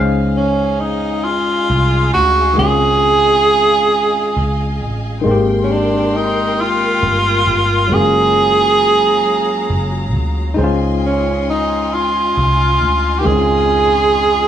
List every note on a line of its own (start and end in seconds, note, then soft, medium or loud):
0.00 1.65 C#2 loud
0.00 2.53 G#3 medium
0.00 2.55 C#4 medium
0.00 2.52 D#4 medium
0.00 5.20 G#4 medium
0.00 2.54 C5 medium
0.00 5.20 D#5 medium
0.00 2.57 F5 loud
0.00 5.20 F5 medium
0.00 5.20 G#5 medium
0.37 0.82 C#4 medium
0.80 1.26 D#4 medium
1.24 2.13 F4 loud
1.70 2.10 C2 medium
2.14 2.54 D2 medium
2.14 2.55 F#4 loud
2.53 5.18 D#3 medium
2.53 5.19 G#3 medium
2.58 4.32 C#2 loud
2.58 5.21 C4 medium
2.58 5.22 C#4 medium
2.58 4.76 G#4 loud
2.63 5.23 F4 medium
4.36 4.81 C#2 medium
4.81 5.21 A1 loud
5.21 7.85 D#3 medium
5.21 7.87 G#3 medium
5.21 7.88 A#4 medium
5.21 7.89 G5 medium
5.21 7.88 C6 medium
5.26 6.99 G#1 loud
5.26 7.88 A#3 medium
5.26 7.89 C4 medium
5.31 7.90 G4 loud
5.64 5.73 C#4 medium
5.72 6.17 D4 medium
6.16 6.62 D#4 medium
6.61 7.95 F4 loud
7.03 7.43 G1 medium
7.47 7.87 G1 medium
7.88 9.65 F#1 loud
7.88 10.52 F#3 medium
7.88 10.55 F#3 medium
7.88 10.53 G#3 medium
7.92 10.54 A#3 medium
7.92 10.55 C#4 medium
7.92 10.14 G#4 loud
7.92 10.55 F5 medium
7.92 10.55 A#5 medium
7.97 10.56 F4 medium
9.70 10.14 F#1 medium
10.14 10.54 D2 medium
10.54 13.20 G#3 medium
10.54 13.19 D#4 medium
10.54 14.48 F4 medium
10.54 14.48 D#5 medium
10.54 14.48 G#5 medium
10.54 14.48 C6 medium
10.58 12.32 C#2 loud
10.58 13.22 C#4 medium
10.58 13.21 C5 medium
10.64 13.23 F4 loud
11.06 11.45 C#4 medium
11.50 11.96 D#4 medium
11.94 13.20 F4 loud
12.37 12.77 C2 loud
12.81 13.21 D2 medium
13.19 14.48 D#3 medium
13.19 13.27 G4 medium
13.23 14.48 C#2 loud
13.23 14.48 G#3 medium
13.23 14.48 C4 medium
13.23 14.48 G#4 loud
13.28 14.48 C#4 medium
13.28 13.34 D#4 medium
13.37 14.48 F4 medium